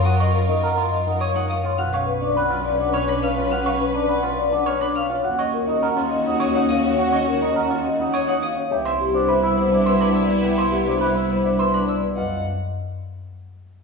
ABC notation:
X:1
M:3/4
L:1/16
Q:1/4=104
K:D#m
V:1 name="Violin"
d' d z6 d' f d' z | e' e z6 e' b e' z | e' e z6 e' b e' z | z d z6 d' f d' z |
z d z6 d' f d' z | z =e z6 =e' b e' z | z =e z6 =e' b e' z | f2 z8 z2 |]
V:2 name="Vibraphone"
f z A d f z d f c z e c | f z B =d f z d f c z e c | f z B =d f z d f c z e c | f z A d f z d f c z e c |
f z A d f z d f c z e c | =e z =G =c e z c e B z =d B | =e z =G =c e z c e B z =d B | d2 z8 z2 |]
V:3 name="Clean electric guitar"
F c z D A E z D c D z E | F c z =D B E z D c D z E | F c z =D B E z D c D z E | F c z D A E z D c D z2 |
F c z D A E z D c D z2 | =G =c z =D B =E z D c D z2 | =G =c z =D B =E z D c D z2 | E2 z8 z2 |]
V:4 name="Violin section"
[EA]8- [EA]3 z | [CB]12- | [CB]8- [CB]3 z | [CF]12- |
[CF]8- [CF]3 z | [B,=E]12- | [B,=E]8- [B,E]3 z | z12 |]
V:5 name="Double bass section" clef=bass
F,,12 | B,,,12- | B,,,12 | D,,12- |
D,,12 | =C,,12- | =C,,12 | F,,2 z8 z2 |]